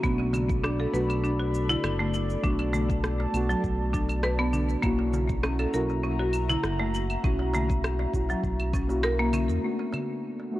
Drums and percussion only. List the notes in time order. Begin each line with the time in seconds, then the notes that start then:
0.04 kick, shaker
0.19 darbuka ka
0.33 darbuka tek, darbuka dum, claves, shaker
0.49 kick, shaker
0.64 cross-stick, shaker
0.79 darbuka ka
0.94 shaker
1.09 darbuka ka, claves, shaker
1.24 shaker
1.54 shaker
1.69 darbuka tek, darbuka dum, shaker
1.84 cross-stick, claves, shaker
2.00 darbuka ka
2.14 shaker
2.30 shaker
2.44 kick, shaker
2.59 darbuka ka, claves
2.73 darbuka tek, darbuka dum, shaker
2.89 kick, darbuka tek, shaker
3.04 cross-stick, shaker
3.20 darbuka ka, darbuka tek
3.34 claves, shaker
3.49 darbuka ka, shaker
3.64 kick, shaker
3.94 kick, shaker
4.09 darbuka tek, claves, shaker
4.23 cross-stick, shaker
4.54 darbuka dum, shaker
4.70 shaker
4.83 kick, claves, shaker
4.99 darbuka ka
5.14 darbuka tek, darbuka dum, shaker
5.30 kick, shaker
5.44 cross-stick, shaker
5.59 darbuka ka, claves
5.74 shaker
5.89 darbuka ka, shaker
6.03 shaker
6.33 claves, shaker
6.49 darbuka tek, darbuka dum, shaker
6.63 cross-stick, shaker
6.79 darbuka ka
6.94 shaker
7.10 claves, shaker
7.24 kick, shaker
7.39 darbuka ka
7.53 darbuka tek, darbuka dum, shaker
7.68 kick, darbuka ka, darbuka tek, shaker
7.84 cross-stick, claves, shaker
7.99 darbuka ka, darbuka tek
8.14 kick, shaker
8.29 darbuka ka, shaker
8.44 kick, shaker
8.60 claves
8.73 kick, shaker
8.89 darbuka tek, shaker
9.04 cross-stick, shaker
9.33 darbuka tek, darbuka dum, claves, shaker
9.50 shaker
9.79 darbuka ka
9.93 darbuka tek, darbuka dum, claves
10.40 darbuka ka